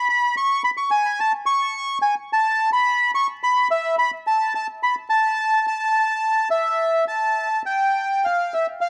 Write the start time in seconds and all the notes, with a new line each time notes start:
0.10 B5
0.37 C#6
0.64 B5
0.77 C#6
0.91 G#5
1.20 A5
1.46 C#6
2.02 G#5
2.33 A5
2.73 B5
3.15 C#6
3.43 B5
3.71 E5
3.99 B5
4.27 A5
4.55 A5
4.83 B5
5.10 A5
5.67 A5
6.51 E5
7.08 A5
7.66 G5
8.25 F5
8.54 E5
8.81 F5